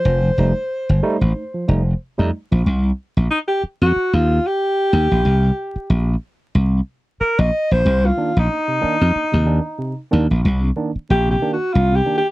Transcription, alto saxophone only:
0.00 1.96 C5 loud
3.31 3.39 D#4 medium
3.48 3.62 G4 medium
3.82 4.16 F#4 loud
4.14 4.49 F4 loud
4.47 6.09 G4 loud
7.20 7.41 A#4 loud
7.39 7.73 D#5 loud
7.72 8.07 C5 loud
8.06 8.40 F4 medium
8.39 10.00 D#4 medium
11.11 11.30 G4 loud
11.31 11.51 G4 medium
11.53 11.75 F#4 medium
11.73 11.97 F4 loud
11.96 12.17 G4 loud
12.18 12.28 G4 loud

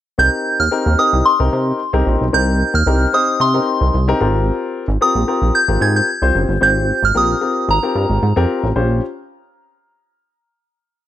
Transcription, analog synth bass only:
0.19 0.29 C2 loud
0.60 0.69 D#2 medium
0.86 0.96 D#2 medium
1.13 1.22 C2 medium
1.40 1.49 C2 loud
1.53 1.73 C3 loud
1.94 2.03 C2 medium
2.06 2.17 A#1 loud
2.21 2.30 B1 medium
2.33 2.63 C2 loud
2.74 2.83 D#2 medium
2.86 3.06 C2 medium
3.40 3.60 C3 loud
3.81 3.90 C2 medium
3.94 4.14 C2 loud
4.21 4.51 G#1 loud
4.88 4.97 G#1 loud
5.15 5.24 A#1 medium
5.42 5.51 A#1 medium
5.68 5.78 G#1 loud
5.81 6.01 G#2 loud
6.22 6.31 C2 medium
6.35 6.45 F#1 loud
6.49 6.58 G1 medium
6.62 6.92 G#1 loud
7.03 7.12 G#1 medium
7.15 7.35 A#1 medium
7.69 7.79 G#1 loud
7.95 8.06 G2 loud
8.10 8.19 G#1 medium
8.23 8.33 G#2 medium
8.37 8.46 F2 medium
8.63 8.73 A1 medium
8.76 9.01 A#1 loud

